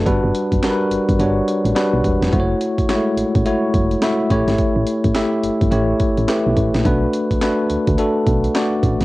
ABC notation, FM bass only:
X:1
M:4/4
L:1/16
Q:"Swing 16ths" 1/4=106
K:Bm
V:1 name="FM bass" clef=bass
G,,, G,,, z F,,, z2 G,,, G,,, G,,,2 z A,,, z B,,, E,,, ^E,,, | F,,,2 z A,,, z2 A,,, A,,, z2 F,,,2 z2 A,,, ^G,,, | z A,,, z A,,, z2 G,,, G,,, A,,,2 z A,,, z B,,, A,,, ^A,,, | B,,,2 z D,, z2 D,, D,, z2 B,,,2 z2 A,,, F,,, |]